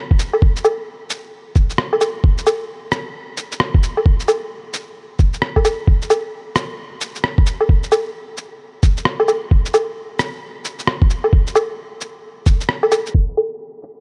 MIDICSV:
0, 0, Header, 1, 2, 480
1, 0, Start_track
1, 0, Tempo, 454545
1, 442, Time_signature, 4, 2, 24, 8
1, 14787, End_track
2, 0, Start_track
2, 0, Title_t, "Drums"
2, 116, Note_on_c, 9, 36, 97
2, 203, Note_on_c, 9, 82, 56
2, 221, Note_off_c, 9, 36, 0
2, 309, Note_off_c, 9, 82, 0
2, 353, Note_on_c, 9, 77, 37
2, 444, Note_on_c, 9, 36, 119
2, 459, Note_off_c, 9, 77, 0
2, 550, Note_off_c, 9, 36, 0
2, 595, Note_on_c, 9, 82, 32
2, 682, Note_off_c, 9, 82, 0
2, 682, Note_on_c, 9, 77, 62
2, 682, Note_on_c, 9, 82, 56
2, 787, Note_off_c, 9, 77, 0
2, 787, Note_off_c, 9, 82, 0
2, 1162, Note_on_c, 9, 82, 55
2, 1268, Note_off_c, 9, 82, 0
2, 1643, Note_on_c, 9, 82, 52
2, 1644, Note_on_c, 9, 36, 102
2, 1749, Note_off_c, 9, 36, 0
2, 1749, Note_off_c, 9, 82, 0
2, 1795, Note_on_c, 9, 82, 29
2, 1882, Note_on_c, 9, 37, 104
2, 1900, Note_off_c, 9, 82, 0
2, 1988, Note_off_c, 9, 37, 0
2, 2036, Note_on_c, 9, 77, 48
2, 2122, Note_off_c, 9, 77, 0
2, 2122, Note_on_c, 9, 77, 50
2, 2122, Note_on_c, 9, 82, 56
2, 2228, Note_off_c, 9, 77, 0
2, 2228, Note_off_c, 9, 82, 0
2, 2363, Note_on_c, 9, 36, 118
2, 2469, Note_off_c, 9, 36, 0
2, 2515, Note_on_c, 9, 82, 32
2, 2604, Note_off_c, 9, 82, 0
2, 2604, Note_on_c, 9, 77, 61
2, 2604, Note_on_c, 9, 82, 53
2, 2710, Note_off_c, 9, 77, 0
2, 2710, Note_off_c, 9, 82, 0
2, 3082, Note_on_c, 9, 37, 107
2, 3082, Note_on_c, 9, 82, 52
2, 3187, Note_off_c, 9, 37, 0
2, 3187, Note_off_c, 9, 82, 0
2, 3562, Note_on_c, 9, 82, 52
2, 3667, Note_off_c, 9, 82, 0
2, 3716, Note_on_c, 9, 82, 30
2, 3802, Note_on_c, 9, 37, 114
2, 3821, Note_off_c, 9, 82, 0
2, 3907, Note_off_c, 9, 37, 0
2, 3955, Note_on_c, 9, 36, 102
2, 4044, Note_on_c, 9, 82, 56
2, 4060, Note_off_c, 9, 36, 0
2, 4150, Note_off_c, 9, 82, 0
2, 4195, Note_on_c, 9, 77, 33
2, 4284, Note_on_c, 9, 36, 118
2, 4301, Note_off_c, 9, 77, 0
2, 4390, Note_off_c, 9, 36, 0
2, 4434, Note_on_c, 9, 82, 30
2, 4522, Note_off_c, 9, 82, 0
2, 4522, Note_on_c, 9, 77, 59
2, 4522, Note_on_c, 9, 82, 50
2, 4627, Note_off_c, 9, 77, 0
2, 4627, Note_off_c, 9, 82, 0
2, 5002, Note_on_c, 9, 82, 52
2, 5108, Note_off_c, 9, 82, 0
2, 5482, Note_on_c, 9, 82, 48
2, 5484, Note_on_c, 9, 36, 99
2, 5587, Note_off_c, 9, 82, 0
2, 5589, Note_off_c, 9, 36, 0
2, 5633, Note_on_c, 9, 82, 28
2, 5722, Note_on_c, 9, 37, 108
2, 5739, Note_off_c, 9, 82, 0
2, 5828, Note_off_c, 9, 37, 0
2, 5873, Note_on_c, 9, 77, 44
2, 5875, Note_on_c, 9, 36, 59
2, 5964, Note_off_c, 9, 77, 0
2, 5964, Note_on_c, 9, 77, 47
2, 5964, Note_on_c, 9, 82, 55
2, 5980, Note_off_c, 9, 36, 0
2, 6070, Note_off_c, 9, 77, 0
2, 6070, Note_off_c, 9, 82, 0
2, 6204, Note_on_c, 9, 36, 117
2, 6309, Note_off_c, 9, 36, 0
2, 6356, Note_on_c, 9, 82, 30
2, 6444, Note_off_c, 9, 82, 0
2, 6444, Note_on_c, 9, 77, 59
2, 6444, Note_on_c, 9, 82, 53
2, 6549, Note_off_c, 9, 77, 0
2, 6549, Note_off_c, 9, 82, 0
2, 6924, Note_on_c, 9, 37, 96
2, 6924, Note_on_c, 9, 82, 51
2, 7030, Note_off_c, 9, 37, 0
2, 7030, Note_off_c, 9, 82, 0
2, 7402, Note_on_c, 9, 82, 52
2, 7508, Note_off_c, 9, 82, 0
2, 7553, Note_on_c, 9, 82, 27
2, 7643, Note_on_c, 9, 37, 104
2, 7659, Note_off_c, 9, 82, 0
2, 7749, Note_off_c, 9, 37, 0
2, 7794, Note_on_c, 9, 36, 98
2, 7882, Note_on_c, 9, 82, 52
2, 7900, Note_off_c, 9, 36, 0
2, 7988, Note_off_c, 9, 82, 0
2, 8032, Note_on_c, 9, 77, 33
2, 8122, Note_on_c, 9, 36, 113
2, 8137, Note_off_c, 9, 77, 0
2, 8228, Note_off_c, 9, 36, 0
2, 8272, Note_on_c, 9, 82, 29
2, 8362, Note_off_c, 9, 82, 0
2, 8362, Note_on_c, 9, 77, 62
2, 8362, Note_on_c, 9, 82, 49
2, 8467, Note_off_c, 9, 77, 0
2, 8467, Note_off_c, 9, 82, 0
2, 8841, Note_on_c, 9, 82, 49
2, 8947, Note_off_c, 9, 82, 0
2, 9324, Note_on_c, 9, 36, 91
2, 9325, Note_on_c, 9, 82, 49
2, 9430, Note_off_c, 9, 36, 0
2, 9430, Note_off_c, 9, 82, 0
2, 9473, Note_on_c, 9, 82, 28
2, 9560, Note_on_c, 9, 37, 100
2, 9579, Note_off_c, 9, 82, 0
2, 9666, Note_off_c, 9, 37, 0
2, 9712, Note_on_c, 9, 77, 48
2, 9802, Note_off_c, 9, 77, 0
2, 9802, Note_on_c, 9, 77, 51
2, 9802, Note_on_c, 9, 82, 53
2, 9907, Note_off_c, 9, 77, 0
2, 9907, Note_off_c, 9, 82, 0
2, 10045, Note_on_c, 9, 36, 112
2, 10151, Note_off_c, 9, 36, 0
2, 10196, Note_on_c, 9, 82, 32
2, 10285, Note_off_c, 9, 82, 0
2, 10285, Note_on_c, 9, 77, 63
2, 10285, Note_on_c, 9, 82, 53
2, 10391, Note_off_c, 9, 77, 0
2, 10391, Note_off_c, 9, 82, 0
2, 10765, Note_on_c, 9, 37, 98
2, 10765, Note_on_c, 9, 82, 50
2, 10870, Note_off_c, 9, 37, 0
2, 10870, Note_off_c, 9, 82, 0
2, 11244, Note_on_c, 9, 82, 52
2, 11349, Note_off_c, 9, 82, 0
2, 11396, Note_on_c, 9, 82, 27
2, 11483, Note_on_c, 9, 37, 98
2, 11502, Note_off_c, 9, 82, 0
2, 11589, Note_off_c, 9, 37, 0
2, 11634, Note_on_c, 9, 36, 98
2, 11722, Note_on_c, 9, 82, 54
2, 11739, Note_off_c, 9, 36, 0
2, 11828, Note_off_c, 9, 82, 0
2, 11870, Note_on_c, 9, 77, 36
2, 11962, Note_on_c, 9, 36, 113
2, 11976, Note_off_c, 9, 77, 0
2, 12067, Note_off_c, 9, 36, 0
2, 12112, Note_on_c, 9, 82, 31
2, 12202, Note_off_c, 9, 82, 0
2, 12202, Note_on_c, 9, 77, 67
2, 12202, Note_on_c, 9, 82, 55
2, 12308, Note_off_c, 9, 77, 0
2, 12308, Note_off_c, 9, 82, 0
2, 12681, Note_on_c, 9, 82, 57
2, 12787, Note_off_c, 9, 82, 0
2, 13162, Note_on_c, 9, 36, 102
2, 13162, Note_on_c, 9, 82, 55
2, 13267, Note_off_c, 9, 36, 0
2, 13267, Note_off_c, 9, 82, 0
2, 13311, Note_on_c, 9, 82, 30
2, 13398, Note_on_c, 9, 37, 100
2, 13417, Note_off_c, 9, 82, 0
2, 13504, Note_off_c, 9, 37, 0
2, 13549, Note_on_c, 9, 77, 52
2, 13640, Note_off_c, 9, 77, 0
2, 13640, Note_on_c, 9, 77, 56
2, 13640, Note_on_c, 9, 82, 55
2, 13746, Note_off_c, 9, 77, 0
2, 13746, Note_off_c, 9, 82, 0
2, 13793, Note_on_c, 9, 82, 30
2, 13882, Note_on_c, 9, 36, 105
2, 13899, Note_off_c, 9, 82, 0
2, 13987, Note_off_c, 9, 36, 0
2, 14030, Note_on_c, 9, 82, 30
2, 14122, Note_off_c, 9, 82, 0
2, 14122, Note_on_c, 9, 77, 59
2, 14122, Note_on_c, 9, 82, 49
2, 14227, Note_off_c, 9, 77, 0
2, 14227, Note_off_c, 9, 82, 0
2, 14601, Note_on_c, 9, 82, 50
2, 14706, Note_off_c, 9, 82, 0
2, 14787, End_track
0, 0, End_of_file